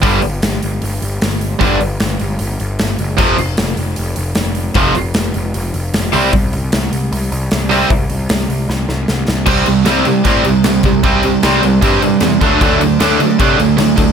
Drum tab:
CC |--------|--------|x-------|--------|
HH |oooooooo|oooooooo|-ooooooo|oooooooo|
SD |--o---o-|--o---o-|--o---o-|--o---o-|
BD |o-------|o-------|o-------|o-------|

CC |--------|--------|xxxxxxxx|xxxxxxxx|
HH |oooooooo|oooo----|--------|--------|
SD |--o---o-|--o-oooo|--o---o-|--o---o-|
BD |o-------|o-------|o---o--o|o---o--o|

CC |xxxxxxxx|
HH |--------|
SD |--o---o-|
BD |o---o--o|